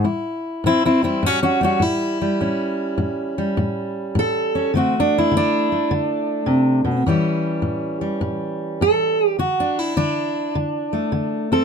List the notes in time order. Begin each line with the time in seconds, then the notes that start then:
0.04 A2 E4
0.64 A2 C4 E4
0.85 C4 E4
1.02 G3 C4 E4
1.23 A2 C#4
1.27 F#4
1.43 C#4 F#4
1.61 G3 C#4 F#4
1.80 A2 E4
2.21 G3
2.41 A2 C#4
2.98 A2
3.38 G3
3.57 A2
4.15 A2 A4
4.55 C#4
4.74 D3 A3 C4 F#4
5.00 D4
5.18 E4
5.31 D3
5.37 D4
5.72 A3
5.91 D3
6.46 C3
6.85 B2
7.06 A2 E3 G3 C#4 G4
7.62 A2
8.01 G3
8.21 A2
8.81 A2 A4
9.27 G4
9.39 D3 F#4
9.60 D4
9.79 E4
9.97 D3 D4
10.55 D3
10.93 A3
11.12 D3
11.52 C4 A4